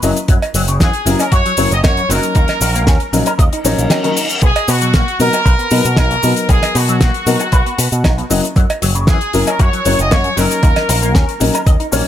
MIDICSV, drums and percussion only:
0, 0, Header, 1, 2, 480
1, 0, Start_track
1, 0, Key_signature, 5, "major"
1, 0, Tempo, 517241
1, 265, Time_signature, 4, 2, 24, 8
1, 11206, End_track
2, 0, Start_track
2, 0, Title_t, "Drums"
2, 24, Note_on_c, 9, 69, 85
2, 25, Note_on_c, 9, 46, 96
2, 117, Note_off_c, 9, 69, 0
2, 118, Note_off_c, 9, 46, 0
2, 152, Note_on_c, 9, 42, 56
2, 155, Note_on_c, 9, 69, 57
2, 245, Note_off_c, 9, 42, 0
2, 247, Note_off_c, 9, 69, 0
2, 262, Note_on_c, 9, 42, 78
2, 265, Note_on_c, 9, 36, 119
2, 271, Note_on_c, 9, 69, 51
2, 355, Note_off_c, 9, 42, 0
2, 358, Note_off_c, 9, 36, 0
2, 364, Note_off_c, 9, 69, 0
2, 393, Note_on_c, 9, 56, 81
2, 398, Note_on_c, 9, 42, 59
2, 486, Note_off_c, 9, 56, 0
2, 491, Note_off_c, 9, 42, 0
2, 503, Note_on_c, 9, 46, 106
2, 506, Note_on_c, 9, 69, 86
2, 596, Note_off_c, 9, 46, 0
2, 599, Note_off_c, 9, 69, 0
2, 629, Note_on_c, 9, 69, 62
2, 631, Note_on_c, 9, 42, 51
2, 722, Note_off_c, 9, 69, 0
2, 724, Note_off_c, 9, 42, 0
2, 745, Note_on_c, 9, 36, 108
2, 746, Note_on_c, 9, 69, 60
2, 748, Note_on_c, 9, 38, 127
2, 749, Note_on_c, 9, 42, 84
2, 838, Note_off_c, 9, 36, 0
2, 839, Note_off_c, 9, 69, 0
2, 841, Note_off_c, 9, 38, 0
2, 842, Note_off_c, 9, 42, 0
2, 867, Note_on_c, 9, 42, 58
2, 960, Note_off_c, 9, 42, 0
2, 988, Note_on_c, 9, 69, 89
2, 990, Note_on_c, 9, 46, 93
2, 1081, Note_off_c, 9, 69, 0
2, 1083, Note_off_c, 9, 46, 0
2, 1106, Note_on_c, 9, 69, 61
2, 1109, Note_on_c, 9, 56, 62
2, 1115, Note_on_c, 9, 42, 61
2, 1199, Note_off_c, 9, 69, 0
2, 1202, Note_off_c, 9, 56, 0
2, 1208, Note_off_c, 9, 42, 0
2, 1222, Note_on_c, 9, 42, 76
2, 1225, Note_on_c, 9, 36, 114
2, 1228, Note_on_c, 9, 69, 51
2, 1315, Note_off_c, 9, 42, 0
2, 1318, Note_off_c, 9, 36, 0
2, 1320, Note_off_c, 9, 69, 0
2, 1351, Note_on_c, 9, 42, 59
2, 1444, Note_off_c, 9, 42, 0
2, 1458, Note_on_c, 9, 46, 108
2, 1459, Note_on_c, 9, 69, 84
2, 1551, Note_off_c, 9, 46, 0
2, 1551, Note_off_c, 9, 69, 0
2, 1590, Note_on_c, 9, 42, 54
2, 1592, Note_on_c, 9, 69, 59
2, 1683, Note_off_c, 9, 42, 0
2, 1685, Note_off_c, 9, 69, 0
2, 1705, Note_on_c, 9, 36, 116
2, 1706, Note_on_c, 9, 69, 51
2, 1707, Note_on_c, 9, 38, 127
2, 1707, Note_on_c, 9, 42, 74
2, 1708, Note_on_c, 9, 56, 87
2, 1798, Note_off_c, 9, 36, 0
2, 1798, Note_off_c, 9, 69, 0
2, 1800, Note_off_c, 9, 38, 0
2, 1800, Note_off_c, 9, 42, 0
2, 1801, Note_off_c, 9, 56, 0
2, 1829, Note_on_c, 9, 42, 57
2, 1922, Note_off_c, 9, 42, 0
2, 1948, Note_on_c, 9, 46, 97
2, 1957, Note_on_c, 9, 69, 89
2, 2041, Note_off_c, 9, 46, 0
2, 2050, Note_off_c, 9, 69, 0
2, 2069, Note_on_c, 9, 69, 55
2, 2074, Note_on_c, 9, 42, 50
2, 2161, Note_off_c, 9, 69, 0
2, 2166, Note_off_c, 9, 42, 0
2, 2180, Note_on_c, 9, 42, 72
2, 2186, Note_on_c, 9, 36, 119
2, 2188, Note_on_c, 9, 69, 50
2, 2272, Note_off_c, 9, 42, 0
2, 2278, Note_off_c, 9, 36, 0
2, 2281, Note_off_c, 9, 69, 0
2, 2300, Note_on_c, 9, 42, 59
2, 2308, Note_on_c, 9, 38, 35
2, 2311, Note_on_c, 9, 56, 85
2, 2393, Note_off_c, 9, 42, 0
2, 2401, Note_off_c, 9, 38, 0
2, 2404, Note_off_c, 9, 56, 0
2, 2422, Note_on_c, 9, 69, 98
2, 2428, Note_on_c, 9, 46, 95
2, 2515, Note_off_c, 9, 69, 0
2, 2521, Note_off_c, 9, 46, 0
2, 2555, Note_on_c, 9, 69, 64
2, 2558, Note_on_c, 9, 42, 54
2, 2647, Note_off_c, 9, 69, 0
2, 2651, Note_off_c, 9, 42, 0
2, 2661, Note_on_c, 9, 38, 118
2, 2664, Note_on_c, 9, 42, 84
2, 2666, Note_on_c, 9, 36, 114
2, 2669, Note_on_c, 9, 69, 51
2, 2754, Note_off_c, 9, 38, 0
2, 2757, Note_off_c, 9, 42, 0
2, 2758, Note_off_c, 9, 36, 0
2, 2762, Note_off_c, 9, 69, 0
2, 2785, Note_on_c, 9, 42, 51
2, 2877, Note_off_c, 9, 42, 0
2, 2907, Note_on_c, 9, 46, 91
2, 2909, Note_on_c, 9, 69, 81
2, 3000, Note_off_c, 9, 46, 0
2, 3002, Note_off_c, 9, 69, 0
2, 3024, Note_on_c, 9, 42, 59
2, 3029, Note_on_c, 9, 69, 62
2, 3032, Note_on_c, 9, 56, 63
2, 3117, Note_off_c, 9, 42, 0
2, 3122, Note_off_c, 9, 69, 0
2, 3125, Note_off_c, 9, 56, 0
2, 3145, Note_on_c, 9, 36, 115
2, 3146, Note_on_c, 9, 42, 81
2, 3150, Note_on_c, 9, 69, 45
2, 3238, Note_off_c, 9, 36, 0
2, 3239, Note_off_c, 9, 42, 0
2, 3243, Note_off_c, 9, 69, 0
2, 3272, Note_on_c, 9, 42, 60
2, 3365, Note_off_c, 9, 42, 0
2, 3385, Note_on_c, 9, 69, 89
2, 3386, Note_on_c, 9, 46, 101
2, 3478, Note_off_c, 9, 69, 0
2, 3479, Note_off_c, 9, 46, 0
2, 3511, Note_on_c, 9, 69, 59
2, 3513, Note_on_c, 9, 42, 51
2, 3604, Note_off_c, 9, 69, 0
2, 3605, Note_off_c, 9, 42, 0
2, 3619, Note_on_c, 9, 38, 124
2, 3621, Note_on_c, 9, 42, 83
2, 3627, Note_on_c, 9, 69, 49
2, 3628, Note_on_c, 9, 56, 88
2, 3712, Note_off_c, 9, 38, 0
2, 3713, Note_off_c, 9, 42, 0
2, 3720, Note_off_c, 9, 56, 0
2, 3720, Note_off_c, 9, 69, 0
2, 3750, Note_on_c, 9, 42, 55
2, 3843, Note_off_c, 9, 42, 0
2, 3867, Note_on_c, 9, 46, 102
2, 3869, Note_on_c, 9, 69, 90
2, 3959, Note_off_c, 9, 46, 0
2, 3962, Note_off_c, 9, 69, 0
2, 3984, Note_on_c, 9, 42, 58
2, 3991, Note_on_c, 9, 69, 56
2, 4077, Note_off_c, 9, 42, 0
2, 4083, Note_off_c, 9, 69, 0
2, 4098, Note_on_c, 9, 42, 70
2, 4101, Note_on_c, 9, 69, 51
2, 4104, Note_on_c, 9, 36, 125
2, 4191, Note_off_c, 9, 42, 0
2, 4194, Note_off_c, 9, 69, 0
2, 4197, Note_off_c, 9, 36, 0
2, 4230, Note_on_c, 9, 42, 54
2, 4232, Note_on_c, 9, 56, 99
2, 4323, Note_off_c, 9, 42, 0
2, 4324, Note_off_c, 9, 56, 0
2, 4343, Note_on_c, 9, 69, 93
2, 4346, Note_on_c, 9, 46, 104
2, 4436, Note_off_c, 9, 69, 0
2, 4439, Note_off_c, 9, 46, 0
2, 4464, Note_on_c, 9, 42, 54
2, 4469, Note_on_c, 9, 69, 59
2, 4556, Note_off_c, 9, 42, 0
2, 4562, Note_off_c, 9, 69, 0
2, 4580, Note_on_c, 9, 42, 81
2, 4582, Note_on_c, 9, 38, 118
2, 4583, Note_on_c, 9, 36, 115
2, 4585, Note_on_c, 9, 69, 57
2, 4673, Note_off_c, 9, 42, 0
2, 4675, Note_off_c, 9, 38, 0
2, 4676, Note_off_c, 9, 36, 0
2, 4678, Note_off_c, 9, 69, 0
2, 4715, Note_on_c, 9, 42, 57
2, 4808, Note_off_c, 9, 42, 0
2, 4825, Note_on_c, 9, 69, 80
2, 4826, Note_on_c, 9, 46, 89
2, 4917, Note_off_c, 9, 69, 0
2, 4919, Note_off_c, 9, 46, 0
2, 4947, Note_on_c, 9, 42, 58
2, 4948, Note_on_c, 9, 69, 67
2, 4955, Note_on_c, 9, 56, 65
2, 5040, Note_off_c, 9, 42, 0
2, 5041, Note_off_c, 9, 69, 0
2, 5048, Note_off_c, 9, 56, 0
2, 5064, Note_on_c, 9, 36, 122
2, 5065, Note_on_c, 9, 42, 76
2, 5069, Note_on_c, 9, 69, 45
2, 5156, Note_off_c, 9, 36, 0
2, 5158, Note_off_c, 9, 42, 0
2, 5162, Note_off_c, 9, 69, 0
2, 5189, Note_on_c, 9, 42, 58
2, 5281, Note_off_c, 9, 42, 0
2, 5296, Note_on_c, 9, 69, 82
2, 5300, Note_on_c, 9, 46, 112
2, 5389, Note_off_c, 9, 69, 0
2, 5393, Note_off_c, 9, 46, 0
2, 5427, Note_on_c, 9, 69, 64
2, 5432, Note_on_c, 9, 42, 55
2, 5520, Note_off_c, 9, 69, 0
2, 5524, Note_off_c, 9, 42, 0
2, 5536, Note_on_c, 9, 38, 117
2, 5543, Note_on_c, 9, 42, 85
2, 5544, Note_on_c, 9, 36, 122
2, 5544, Note_on_c, 9, 56, 96
2, 5544, Note_on_c, 9, 69, 53
2, 5629, Note_off_c, 9, 38, 0
2, 5636, Note_off_c, 9, 36, 0
2, 5636, Note_off_c, 9, 42, 0
2, 5637, Note_off_c, 9, 56, 0
2, 5637, Note_off_c, 9, 69, 0
2, 5668, Note_on_c, 9, 42, 53
2, 5761, Note_off_c, 9, 42, 0
2, 5780, Note_on_c, 9, 69, 96
2, 5790, Note_on_c, 9, 46, 94
2, 5873, Note_off_c, 9, 69, 0
2, 5883, Note_off_c, 9, 46, 0
2, 5905, Note_on_c, 9, 42, 56
2, 5912, Note_on_c, 9, 69, 61
2, 5998, Note_off_c, 9, 42, 0
2, 6005, Note_off_c, 9, 69, 0
2, 6021, Note_on_c, 9, 42, 80
2, 6024, Note_on_c, 9, 36, 127
2, 6031, Note_on_c, 9, 69, 51
2, 6114, Note_off_c, 9, 42, 0
2, 6116, Note_off_c, 9, 36, 0
2, 6124, Note_off_c, 9, 69, 0
2, 6141, Note_on_c, 9, 38, 41
2, 6150, Note_on_c, 9, 56, 99
2, 6156, Note_on_c, 9, 42, 57
2, 6234, Note_off_c, 9, 38, 0
2, 6243, Note_off_c, 9, 56, 0
2, 6249, Note_off_c, 9, 42, 0
2, 6265, Note_on_c, 9, 46, 114
2, 6271, Note_on_c, 9, 69, 81
2, 6358, Note_off_c, 9, 46, 0
2, 6364, Note_off_c, 9, 69, 0
2, 6382, Note_on_c, 9, 42, 60
2, 6392, Note_on_c, 9, 69, 60
2, 6475, Note_off_c, 9, 42, 0
2, 6484, Note_off_c, 9, 69, 0
2, 6502, Note_on_c, 9, 38, 127
2, 6502, Note_on_c, 9, 42, 79
2, 6504, Note_on_c, 9, 36, 123
2, 6504, Note_on_c, 9, 69, 50
2, 6595, Note_off_c, 9, 38, 0
2, 6595, Note_off_c, 9, 42, 0
2, 6597, Note_off_c, 9, 36, 0
2, 6597, Note_off_c, 9, 69, 0
2, 6629, Note_on_c, 9, 42, 52
2, 6722, Note_off_c, 9, 42, 0
2, 6743, Note_on_c, 9, 69, 88
2, 6746, Note_on_c, 9, 46, 102
2, 6836, Note_off_c, 9, 69, 0
2, 6839, Note_off_c, 9, 46, 0
2, 6862, Note_on_c, 9, 42, 56
2, 6865, Note_on_c, 9, 56, 63
2, 6868, Note_on_c, 9, 69, 60
2, 6955, Note_off_c, 9, 42, 0
2, 6958, Note_off_c, 9, 56, 0
2, 6961, Note_off_c, 9, 69, 0
2, 6979, Note_on_c, 9, 42, 77
2, 6984, Note_on_c, 9, 36, 123
2, 6987, Note_on_c, 9, 69, 51
2, 7072, Note_off_c, 9, 42, 0
2, 7077, Note_off_c, 9, 36, 0
2, 7080, Note_off_c, 9, 69, 0
2, 7112, Note_on_c, 9, 42, 60
2, 7205, Note_off_c, 9, 42, 0
2, 7224, Note_on_c, 9, 46, 118
2, 7228, Note_on_c, 9, 69, 87
2, 7317, Note_off_c, 9, 46, 0
2, 7320, Note_off_c, 9, 69, 0
2, 7349, Note_on_c, 9, 69, 64
2, 7353, Note_on_c, 9, 42, 58
2, 7442, Note_off_c, 9, 69, 0
2, 7446, Note_off_c, 9, 42, 0
2, 7464, Note_on_c, 9, 36, 122
2, 7466, Note_on_c, 9, 56, 100
2, 7467, Note_on_c, 9, 42, 84
2, 7467, Note_on_c, 9, 69, 54
2, 7468, Note_on_c, 9, 38, 120
2, 7557, Note_off_c, 9, 36, 0
2, 7559, Note_off_c, 9, 56, 0
2, 7559, Note_off_c, 9, 69, 0
2, 7560, Note_off_c, 9, 38, 0
2, 7560, Note_off_c, 9, 42, 0
2, 7593, Note_on_c, 9, 42, 52
2, 7686, Note_off_c, 9, 42, 0
2, 7707, Note_on_c, 9, 69, 91
2, 7708, Note_on_c, 9, 46, 111
2, 7799, Note_off_c, 9, 69, 0
2, 7801, Note_off_c, 9, 46, 0
2, 7840, Note_on_c, 9, 42, 51
2, 7840, Note_on_c, 9, 69, 51
2, 7933, Note_off_c, 9, 42, 0
2, 7933, Note_off_c, 9, 69, 0
2, 7944, Note_on_c, 9, 69, 46
2, 7945, Note_on_c, 9, 36, 127
2, 7950, Note_on_c, 9, 42, 76
2, 8037, Note_off_c, 9, 69, 0
2, 8038, Note_off_c, 9, 36, 0
2, 8043, Note_off_c, 9, 42, 0
2, 8072, Note_on_c, 9, 42, 50
2, 8074, Note_on_c, 9, 56, 97
2, 8165, Note_off_c, 9, 42, 0
2, 8167, Note_off_c, 9, 56, 0
2, 8187, Note_on_c, 9, 46, 114
2, 8190, Note_on_c, 9, 69, 82
2, 8280, Note_off_c, 9, 46, 0
2, 8283, Note_off_c, 9, 69, 0
2, 8308, Note_on_c, 9, 42, 51
2, 8308, Note_on_c, 9, 69, 59
2, 8401, Note_off_c, 9, 42, 0
2, 8401, Note_off_c, 9, 69, 0
2, 8417, Note_on_c, 9, 38, 127
2, 8422, Note_on_c, 9, 42, 83
2, 8425, Note_on_c, 9, 36, 127
2, 8425, Note_on_c, 9, 69, 56
2, 8510, Note_off_c, 9, 38, 0
2, 8514, Note_off_c, 9, 42, 0
2, 8518, Note_off_c, 9, 36, 0
2, 8518, Note_off_c, 9, 69, 0
2, 8546, Note_on_c, 9, 42, 56
2, 8639, Note_off_c, 9, 42, 0
2, 8661, Note_on_c, 9, 46, 102
2, 8668, Note_on_c, 9, 69, 76
2, 8754, Note_off_c, 9, 46, 0
2, 8761, Note_off_c, 9, 69, 0
2, 8786, Note_on_c, 9, 69, 56
2, 8792, Note_on_c, 9, 56, 73
2, 8793, Note_on_c, 9, 42, 52
2, 8879, Note_off_c, 9, 69, 0
2, 8885, Note_off_c, 9, 56, 0
2, 8886, Note_off_c, 9, 42, 0
2, 8903, Note_on_c, 9, 42, 75
2, 8905, Note_on_c, 9, 36, 125
2, 8908, Note_on_c, 9, 69, 49
2, 8996, Note_off_c, 9, 42, 0
2, 8998, Note_off_c, 9, 36, 0
2, 9001, Note_off_c, 9, 69, 0
2, 9032, Note_on_c, 9, 42, 56
2, 9125, Note_off_c, 9, 42, 0
2, 9143, Note_on_c, 9, 46, 111
2, 9145, Note_on_c, 9, 69, 81
2, 9236, Note_off_c, 9, 46, 0
2, 9238, Note_off_c, 9, 69, 0
2, 9270, Note_on_c, 9, 42, 49
2, 9271, Note_on_c, 9, 69, 57
2, 9363, Note_off_c, 9, 42, 0
2, 9364, Note_off_c, 9, 69, 0
2, 9383, Note_on_c, 9, 42, 76
2, 9386, Note_on_c, 9, 36, 127
2, 9387, Note_on_c, 9, 38, 125
2, 9389, Note_on_c, 9, 69, 52
2, 9393, Note_on_c, 9, 56, 92
2, 9476, Note_off_c, 9, 42, 0
2, 9478, Note_off_c, 9, 36, 0
2, 9480, Note_off_c, 9, 38, 0
2, 9482, Note_off_c, 9, 69, 0
2, 9486, Note_off_c, 9, 56, 0
2, 9503, Note_on_c, 9, 42, 59
2, 9596, Note_off_c, 9, 42, 0
2, 9626, Note_on_c, 9, 46, 104
2, 9629, Note_on_c, 9, 69, 88
2, 9719, Note_off_c, 9, 46, 0
2, 9721, Note_off_c, 9, 69, 0
2, 9752, Note_on_c, 9, 69, 58
2, 9758, Note_on_c, 9, 42, 56
2, 9845, Note_off_c, 9, 69, 0
2, 9851, Note_off_c, 9, 42, 0
2, 9862, Note_on_c, 9, 42, 78
2, 9866, Note_on_c, 9, 36, 125
2, 9875, Note_on_c, 9, 69, 45
2, 9955, Note_off_c, 9, 42, 0
2, 9958, Note_off_c, 9, 36, 0
2, 9968, Note_off_c, 9, 69, 0
2, 9986, Note_on_c, 9, 42, 54
2, 9988, Note_on_c, 9, 56, 94
2, 9992, Note_on_c, 9, 38, 38
2, 10078, Note_off_c, 9, 42, 0
2, 10081, Note_off_c, 9, 56, 0
2, 10085, Note_off_c, 9, 38, 0
2, 10106, Note_on_c, 9, 46, 112
2, 10110, Note_on_c, 9, 69, 80
2, 10199, Note_off_c, 9, 46, 0
2, 10203, Note_off_c, 9, 69, 0
2, 10232, Note_on_c, 9, 42, 49
2, 10233, Note_on_c, 9, 69, 59
2, 10325, Note_off_c, 9, 42, 0
2, 10326, Note_off_c, 9, 69, 0
2, 10345, Note_on_c, 9, 36, 119
2, 10347, Note_on_c, 9, 38, 127
2, 10347, Note_on_c, 9, 42, 70
2, 10352, Note_on_c, 9, 69, 51
2, 10438, Note_off_c, 9, 36, 0
2, 10440, Note_off_c, 9, 38, 0
2, 10440, Note_off_c, 9, 42, 0
2, 10445, Note_off_c, 9, 69, 0
2, 10474, Note_on_c, 9, 42, 54
2, 10567, Note_off_c, 9, 42, 0
2, 10585, Note_on_c, 9, 69, 81
2, 10588, Note_on_c, 9, 46, 102
2, 10678, Note_off_c, 9, 69, 0
2, 10681, Note_off_c, 9, 46, 0
2, 10705, Note_on_c, 9, 42, 53
2, 10716, Note_on_c, 9, 56, 71
2, 10716, Note_on_c, 9, 69, 64
2, 10798, Note_off_c, 9, 42, 0
2, 10809, Note_off_c, 9, 56, 0
2, 10809, Note_off_c, 9, 69, 0
2, 10825, Note_on_c, 9, 36, 127
2, 10826, Note_on_c, 9, 42, 78
2, 10827, Note_on_c, 9, 69, 51
2, 10918, Note_off_c, 9, 36, 0
2, 10919, Note_off_c, 9, 42, 0
2, 10920, Note_off_c, 9, 69, 0
2, 10951, Note_on_c, 9, 42, 51
2, 11044, Note_off_c, 9, 42, 0
2, 11065, Note_on_c, 9, 69, 90
2, 11071, Note_on_c, 9, 46, 112
2, 11158, Note_off_c, 9, 69, 0
2, 11164, Note_off_c, 9, 46, 0
2, 11206, End_track
0, 0, End_of_file